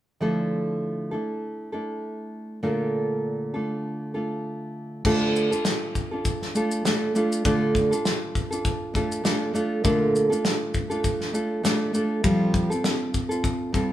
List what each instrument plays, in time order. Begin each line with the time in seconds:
0.20 nylon-string guitar D3 F3 A3 D4 E4 A4
1.11 nylon-string guitar A3 D4 E4 A4
1.72 nylon-string guitar A3 D4 E4 A4
2.63 nylon-string guitar A#2 D3 A3 D4 F4 A4
3.54 nylon-string guitar A3 D4 F4 A4
4.14 nylon-string guitar A3 D4 F4 A4
5.05 nylon-string guitar D3 A3 D4 F4 A4, kick, crash
5.36 shaker
5.51 nylon-string guitar D4 F4 A4, shaker
5.65 snare, shaker
5.95 kick, shaker
6.11 nylon-string guitar D4 F4 A4
6.25 kick, shaker
6.42 snare
6.55 nylon-string guitar A3 D4 F4 A4, shaker
6.71 shaker
6.85 nylon-string guitar A3 D4 F4 A4, snare, shaker
7.15 nylon-string guitar A3 D4 F4 A4, shaker
7.32 shaker
7.45 nylon-string guitar D3 A3 D4 F4 A4, kick, shaker
7.75 kick, shaker
7.91 nylon-string guitar D4 F4 A4, shaker
8.05 snare, shaker
8.35 kick, shaker
8.51 nylon-string guitar D4 F4 A4, shaker
8.65 kick, shaker
8.94 nylon-string guitar A3 D4 F4 A4, kick, shaker
9.12 shaker
9.24 nylon-string guitar A3 D4 F4 A4, snare, shaker
9.53 nylon-string guitar A3 D4 F4 A4, shaker
9.84 nylon-string guitar A#2 D3 A3 D4 F4 A4, kick, shaker
10.16 shaker
10.30 nylon-string guitar A3 D4 F4 A4, shaker
10.45 snare, shaker
10.74 kick, shaker
10.90 nylon-string guitar A3 D4 F4 A4, shaker
11.04 kick, shaker
11.21 snare
11.33 nylon-string guitar A3 D4 F4 A4, shaker
11.63 nylon-string guitar A3 D4 F4 A4, snare, shaker
11.93 nylon-string guitar A3 D4 F4 A4, shaker
12.24 nylon-string guitar F3 G3 C4 F4 A4, kick, shaker
12.54 kick, shaker
12.70 nylon-string guitar C4 F4 A4, shaker
12.84 snare, shaker
13.14 kick, shaker
13.29 nylon-string guitar C4 F4 A4, shaker
13.44 kick, shaker
13.72 nylon-string guitar G3 C4 F4 A4, kick, shaker